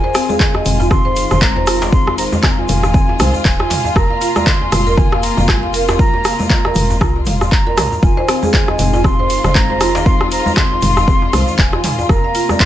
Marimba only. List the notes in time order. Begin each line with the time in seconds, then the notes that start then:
0.04 C5
0.15 C4
0.29 G#4
0.55 D#5
0.66 C4
0.80 F4
0.91 C4
1.05 C5
1.31 C5
1.42 C4
1.56 C5
1.67 F4
1.93 C4
2.18 C5
2.43 C4
2.58 F4
2.83 F5
2.94 C4
3.20 C5
3.60 F4
3.85 F5
3.96 A#4
4.11 F5
4.21 F4
4.36 D5
4.61 G#5
4.72 F4
4.87 A#4
4.98 F4
5.12 F5
5.38 F5
5.49 F4
5.63 F5
5.74 A#4
5.99 F4
6.25 F5
6.50 F4
6.65 A#4
6.90 A#5
7.01 F4
7.26 F5
7.67 A#4
7.92 A#5
8.03 F4
8.17 C5
8.28 C4
8.43 G#4
8.68 D#5
8.79 C4
8.94 F4
9.05 C4
9.19 C5
9.45 C5
9.56 C4
9.70 C5
9.81 F4
10.06 C4
10.32 C5
10.57 C4
10.72 F4
10.97 F5
11.08 C4
11.33 C5
11.73 F4
11.99 F5
12.09 A#4
12.24 F5
12.35 F4
12.49 D5